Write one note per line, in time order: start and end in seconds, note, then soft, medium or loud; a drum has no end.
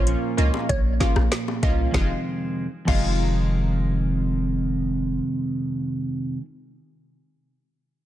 0.00 0.15 A#1 medium
0.00 1.94 A#2 medium
0.00 0.34 A#3 medium
0.00 0.34 C#4 medium
0.00 0.34 F4 medium
0.07 1.96 F3 medium
0.07 0.37 A#3 medium
0.07 2.00 C#4 medium
0.07 closed hi-hat medium
0.37 0.50 C#2 medium
0.37 0.66 A#3 medium
0.37 1.98 A#3 medium
0.37 0.67 C#4 medium
0.37 0.67 F4 medium
0.37 0.49 D#5 medium
0.37 closed hi-hat medium
0.37 low bongo medium
0.54 high bongo medium
0.69 1.06 A#1 loud
0.69 1.13 C#5 medium
0.69 kick loud
0.69 closed hi-hat medium
1.00 1.19 A#3 medium
1.00 1.19 C#4 medium
1.00 1.19 F4 medium
1.00 kick loud
1.00 snare medium
1.00 closed hi-hat medium
1.00 high bongo medium
1.16 1.28 A#1 medium
1.16 cross-stick loud
1.16 high bongo medium
1.32 finger snap loud
1.32 snare loud
1.32 closed hi-hat medium
1.48 high bongo medium
1.63 1.87 C2 loud
1.63 1.92 A#3 medium
1.63 1.92 C#4 medium
1.63 1.92 F4 medium
1.63 1.74 D#5 medium
1.63 kick medium
1.63 closed hi-hat soft
1.63 low bongo medium
1.91 2.12 F1 loud
1.91 2.66 F2 medium
1.91 2.66 C3 medium
1.91 2.11 G#3 medium
1.91 2.12 D#4 medium
1.91 2.12 F4 loud
1.91 2.12 F5 medium
1.91 kick loud
1.91 snare medium
1.91 high bongo medium
1.97 2.66 D#3 loud
1.97 2.66 G#3 medium
2.01 2.66 C4 loud
2.85 5.20 F1 loud
2.85 6.35 F2 medium
2.85 6.38 C3 medium
2.85 5.90 G#3 medium
2.85 5.90 D#4 medium
2.85 5.90 F4 loud
2.85 3.78 F5 medium
2.85 kick loud
2.85 crash medium
2.85 high bongo medium
2.90 6.40 D#3 medium
2.90 6.43 G#3 medium
2.95 6.45 C4 medium